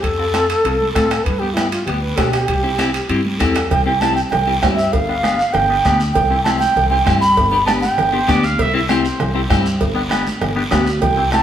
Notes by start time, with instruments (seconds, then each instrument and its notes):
0.03 upright bass F2, alto flute A4, bombo low, high conga, high timbale, long guiro
0.19 clean electric guitar C4 F4 A4
0.34 clean electric guitar C4 F4 A4, bombo rim, high conga, high timbale, short guiro
0.49 high timbale, short guiro
0.65 upright bass C2, clean electric guitar C4 F4 A4, high conga, high timbale, long guiro
0.80 high conga
0.94 upright bass A2, clean electric guitar C4 F4 A4, alto flute A4, bombo low, bombo rim, high conga, high timbale, short guiro
1.11 bombo rim, high timbale, short guiro
1.24 upright bass G2, alto flute B4, bombo low, high conga, high timbale, long guiro
1.39 clean electric guitar B3 D4 G4, alto flute G4
1.54 clean electric guitar B3 D4 G4, alto flute E4, bombo rim, high conga, high timbale, short guiro
1.71 alto flute F4, high timbale, short guiro
1.85 upright bass D2, clean electric guitar B3 D4 G4, alto flute G4, high conga, high timbale, long guiro
2.01 alto flute B4
2.16 upright bass B2, clean electric guitar B3 D4 G4, alto flute A4, bombo low, bombo rim, high conga, high timbale, low timbale, short guiro
2.30 alto flute G4, bombo rim, high timbale, short guiro
2.48 upright bass C2, bombo low, high conga, high timbale, long guiro
2.63 clean electric guitar C4 E4 G4
2.78 clean electric guitar C4 E4 G4, bombo rim, high conga, high timbale, short guiro
2.94 high timbale, short guiro
3.09 upright bass G2, clean electric guitar C4 E4 G4, high conga, high timbale, long guiro
3.25 high conga
3.39 upright bass E2, clean electric guitar C4 E4 G4, alto flute A4, bombo low, bombo rim, high conga, high timbale, short guiro
3.55 bombo rim, high timbale, short guiro
3.70 upright bass C2, alto flute G5, bombo low, cowbell, low conga, long guiro
3.86 clean electric guitar C4 E4 G4, alto flute G5
4.01 clean electric guitar C4 E4 G4, alto flute A5, bombo rim, high conga, short guiro
4.15 alto flute G5, short guiro
4.30 upright bass C2, alto flute G5, bombo rim, cowbell, low conga, long guiro
4.47 clean electric guitar C4 E4 G4
4.61 upright bass G2, clean electric guitar C4 E4 G4, alto flute G5, bombo low, bombo rim, high conga, low timbale, short guiro
4.76 alto flute E5, short guiro
4.92 upright bass G1, alto flute F5, bombo low, cowbell, long guiro
5.08 clean electric guitar B3 D4 G4
5.23 clean electric guitar B3 D4 G4, bombo rim, high conga, short guiro
5.39 short guiro
5.53 upright bass G1, alto flute G5, bombo rim, cowbell, low conga, long guiro
5.70 clean electric guitar B3 D4 G4
5.85 upright bass D2, clean electric guitar B3 D4 G4, bombo low, bombo rim, high conga, short guiro
6.00 short guiro
6.13 upright bass C2, alto flute G5, bombo low, cowbell, low conga, long guiro
6.30 clean electric guitar C4 E4 G4
6.44 clean electric guitar C4 E4 G4, alto flute A5, bombo rim, high conga, short guiro
6.59 alto flute G5, high conga, short guiro
6.76 upright bass C2, cowbell, low conga, long guiro
6.90 clean electric guitar C4 E4 G4, alto flute G5
7.05 upright bass G2, clean electric guitar C4 E4 G4, bombo low, bombo rim, high conga, low conga, short guiro
7.21 alto flute B5, short guiro
7.37 upright bass G1, bombo low, cowbell, long guiro
7.51 clean electric guitar B3 D4 G4, alto flute B5
7.66 clean electric guitar B3 D4 G4, alto flute A5, bombo rim, high conga, short guiro
7.81 alto flute G5, high conga, short guiro
7.98 upright bass G1, bombo rim, cowbell, low conga, long guiro
8.12 clean electric guitar B3 D4 G4, trumpet C5
8.28 upright bass D2, clean electric guitar B3 D4 G4, trumpet D5, bombo low, bombo rim, high conga, short guiro
8.43 trumpet F5, short guiro
8.58 upright bass C2, trumpet E5, bombo low, cowbell, long guiro
8.73 clean electric guitar C4 E4 G4, trumpet E5
8.89 clean electric guitar C4 E4 G4, trumpet C5, bombo rim, high conga, short guiro
9.05 short guiro
9.20 upright bass C2, bombo rim, cowbell, low conga, long guiro
9.34 clean electric guitar C4 E4 G4
9.49 upright bass G2, clean electric guitar C4 E4 G4, bombo low, bombo rim, high conga, short guiro
9.66 short guiro
9.81 upright bass G1, bombo low, cowbell, long guiro
9.95 clean electric guitar B3 D4 G4
10.09 clean electric guitar B3 D4 G4, bombo rim, high conga, short guiro
10.27 high conga, short guiro
10.41 upright bass G1, bombo rim, cowbell, low conga, long guiro
10.56 clean electric guitar B3 D4 G4
10.71 upright bass D2, clean electric guitar B3 D4 G4, bombo low, bombo rim, high conga, low timbale, short guiro
10.87 short guiro
11.01 upright bass C2, alto flute G5, bombo low, cowbell, low conga, long guiro
11.17 clean electric guitar C4 E4 G4
11.32 clean electric guitar C4 E4 G4, alto flute A5, bombo rim, high conga, short guiro